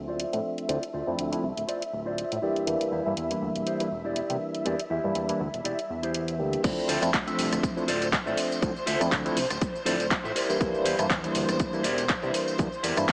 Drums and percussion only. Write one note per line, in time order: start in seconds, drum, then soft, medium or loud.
0.20 closed hi-hat medium
0.33 closed hi-hat soft
0.45 tambourine medium
0.58 closed hi-hat soft
0.69 closed hi-hat medium
0.83 closed hi-hat soft
0.94 tambourine medium
1.19 closed hi-hat medium
1.33 closed hi-hat soft
1.57 closed hi-hat soft
1.69 closed hi-hat medium
1.82 closed hi-hat medium
1.92 tambourine medium
2.18 closed hi-hat medium
2.32 closed hi-hat soft
2.56 closed hi-hat soft
2.67 closed hi-hat medium
2.81 closed hi-hat soft
2.92 tambourine medium
3.17 closed hi-hat medium
3.31 closed hi-hat medium
3.42 tambourine medium
3.56 closed hi-hat soft
3.67 closed hi-hat medium
3.80 closed hi-hat medium
3.92 tambourine medium
4.04 tambourine soft
4.16 closed hi-hat medium
4.30 closed hi-hat medium
4.41 tambourine medium
4.55 closed hi-hat soft
4.66 closed hi-hat medium
4.79 closed hi-hat medium
4.91 tambourine medium
5.04 tambourine soft
5.15 closed hi-hat medium
5.29 closed hi-hat medium
5.41 tambourine medium
5.53 closed hi-hat soft
5.53 tambourine soft
5.65 closed hi-hat medium
5.79 closed hi-hat medium
5.90 tambourine medium
6.03 closed hi-hat soft
6.14 closed hi-hat medium
6.28 closed hi-hat soft
6.39 tambourine medium
6.53 closed hi-hat soft
6.53 tambourine soft
6.64 kick loud
6.64 closed hi-hat medium
6.64 crash loud
6.64 tambourine medium
6.64 shaker soft
6.78 tambourine soft
6.78 shaker soft
6.89 open hi-hat loud
6.89 shaker medium
7.02 cross-stick medium
7.02 closed hi-hat medium
7.02 tambourine medium
7.02 shaker soft
7.14 kick loud
7.14 clap loud
7.14 closed hi-hat medium
7.14 shaker soft
7.27 closed hi-hat medium
7.27 tambourine soft
7.27 shaker soft
7.39 open hi-hat medium
7.39 shaker medium
7.52 cross-stick medium
7.52 closed hi-hat medium
7.52 tambourine medium
7.52 shaker soft
7.63 kick loud
7.63 closed hi-hat medium
7.63 tambourine medium
7.63 shaker soft
7.77 tambourine soft
7.77 shaker soft
7.88 open hi-hat loud
7.88 shaker medium
8.02 closed hi-hat medium
8.02 tambourine medium
8.02 shaker soft
8.13 kick loud
8.13 clap loud
8.13 closed hi-hat medium
8.13 shaker soft
8.27 tambourine soft
8.27 shaker soft
8.37 open hi-hat medium
8.37 shaker medium
8.52 tambourine medium
8.52 shaker soft
8.62 kick loud
8.62 closed hi-hat medium
8.62 tambourine medium
8.62 shaker soft
8.76 tambourine soft
8.76 shaker soft
8.87 open hi-hat loud
8.87 shaker medium
9.01 cross-stick medium
9.01 closed hi-hat medium
9.01 tambourine medium
9.01 shaker soft
9.12 kick loud
9.12 clap loud
9.12 closed hi-hat medium
9.12 tambourine medium
9.12 shaker soft
9.26 closed hi-hat medium
9.26 tambourine soft
9.26 shaker soft
9.37 open hi-hat loud
9.37 shaker medium
9.50 cross-stick medium
9.50 closed hi-hat medium
9.50 tambourine medium
9.50 shaker soft
9.61 kick loud
9.61 closed hi-hat medium
9.61 shaker soft
9.75 tambourine soft
9.75 shaker soft
9.86 open hi-hat loud
9.86 shaker medium
10.00 closed hi-hat medium
10.00 tambourine medium
10.00 shaker soft
10.11 kick loud
10.11 clap loud
10.11 closed hi-hat medium
10.11 shaker soft
10.25 tambourine soft
10.25 shaker soft
10.36 open hi-hat loud
10.36 shaker medium
10.50 tambourine medium
10.50 shaker soft
10.61 kick loud
10.61 closed hi-hat medium
10.61 tambourine medium
10.61 shaker soft
10.74 tambourine soft
10.74 shaker soft
10.86 open hi-hat loud
10.86 shaker medium
10.99 cross-stick medium
10.99 closed hi-hat medium
10.99 tambourine medium
10.99 shaker soft
11.10 kick loud
11.10 clap loud
11.10 closed hi-hat medium
11.10 tambourine medium
11.10 shaker soft
11.24 closed hi-hat medium
11.24 tambourine soft
11.24 shaker soft
11.35 open hi-hat loud
11.35 shaker medium
11.49 cross-stick medium
11.49 closed hi-hat medium
11.49 tambourine medium
11.49 shaker soft
11.59 kick loud
11.59 closed hi-hat medium
11.59 tambourine medium
11.59 shaker soft
11.73 tambourine soft
11.73 shaker soft
11.84 open hi-hat loud
11.84 shaker medium
11.98 closed hi-hat medium
11.98 tambourine medium
11.98 shaker soft
12.09 kick loud
12.09 clap loud
12.09 closed hi-hat medium
12.09 shaker soft
12.22 tambourine soft
12.22 shaker soft
12.34 open hi-hat loud
12.34 shaker medium
12.48 tambourine medium
12.48 shaker soft
12.58 kick loud
12.58 closed hi-hat medium
12.58 tambourine medium
12.58 shaker soft
12.72 tambourine soft
12.72 shaker soft
12.84 open hi-hat loud
12.84 shaker medium
12.96 cross-stick medium
12.96 closed hi-hat soft
12.96 tambourine medium
12.96 shaker soft
13.08 kick loud
13.08 clap loud
13.08 closed hi-hat medium
13.08 tambourine medium
13.08 shaker soft